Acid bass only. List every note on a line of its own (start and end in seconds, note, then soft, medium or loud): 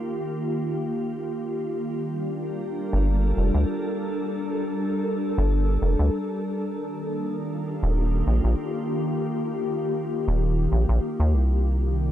2.93 3.33 G1 loud
3.37 3.51 F1 medium
3.54 3.65 D2 loud
5.38 5.78 G1 loud
5.82 5.96 F1 medium
5.99 6.10 D2 loud
7.83 8.23 D#1 loud
8.27 8.41 A#1 medium
8.44 8.55 A#1 loud
10.28 10.68 D#1 loud
10.72 10.86 A#1 medium
10.89 11.00 A#1 loud
11.20 11.35 D#2 loud
11.33 12.12 C2 medium